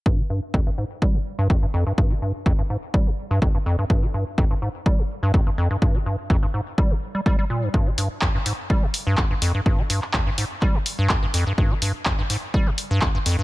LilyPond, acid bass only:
\new Staff \with { instrumentName = "Acid bass" } { \clef bass \time 4/4 \key g \phrygian \tempo 4 = 125 g,16 d16 g,16 r16 f,16 g,16 aes,16 r16 g16 aes,16 r16 g,16 f,16 g,16 f,16 g,16 | g,16 d16 g,16 r16 f,16 g,16 aes,16 r16 g16 aes,16 r16 g,16 f,16 g,16 f,16 g,16 | g,16 d16 g,16 r16 f,16 g,16 aes,16 r16 g16 aes,16 r16 g,16 f,16 g,16 f,16 g,16 | g,16 d16 g,16 r16 f,16 g,16 aes,16 r16 g16 aes,16 r16 g16 g16 g16 bes,16 g,16 |
g,16 d16 g,16 r16 f,16 g,16 aes,16 r16 g16 aes,16 r16 g,16 f,16 g,16 f,16 g,16 | g,16 d16 g,16 r16 f,16 g,16 aes,16 r16 g16 aes,16 r16 g,16 f,16 g,16 f,16 g,16 | g,16 d16 g,16 r16 f,16 g,16 aes,16 r16 g16 aes,16 r16 g,16 f,16 g,16 f,16 g,16 | }